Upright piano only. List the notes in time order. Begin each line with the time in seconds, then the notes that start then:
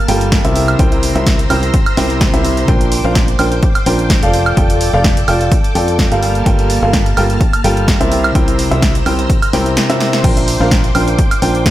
0.08 G3 F4 A4 A#4 G5
0.45 C3 E4 A#4 C5 E5
0.79 C3 E4 A#4 C5 G5
1.16 C3 E4 A#4 C5 E5
1.50 C3 E4 A#4 C5 G5
1.97 C3 E4 A#4 C5 G5
2.34 C3 E4 A#4 C5 E5
2.68 A#2 D4 A#4 C5 G5
3.05 A#2 D4 A#4 C5 F5
3.39 A#2 D4 A#4 C5 G5
3.86 A#2 D4 A#4 C5 G5
4.23 F3 F4 A4 D5 F5
4.57 F3 F4 A4 D5 G5
4.93 F3 F4 A4 D5 F5
5.28 F3 F4 A4 D5 G5
5.75 F3 F4 A4 D5 G5
6.12 G3 F4 A4 A#4 F5
6.46 G3 F4 A4 A#4 G5
6.83 G3 F4 A4 A#4 F5
7.17 G3 F4 A4 A#4 G5
7.64 G3 F4 A4 A#4 G5
8.01 C3 E4 A#4 C5 E5
8.35 C3 E4 A#4 C5 G5
8.71 C3 E4 A#4 C5 E5
9.06 C3 E4 A#4 C5 G5
9.53 C3 E4 A#4 C5 G5
9.90 C3 E4 A#4 C5 E5
10.24 A#2 D4 A#4 C5 G5
10.60 A#2 D4 A#4 C5 F5
10.95 A#2 D4 A#4 C5 G5
11.42 A#2 D4 A#4 C5 G5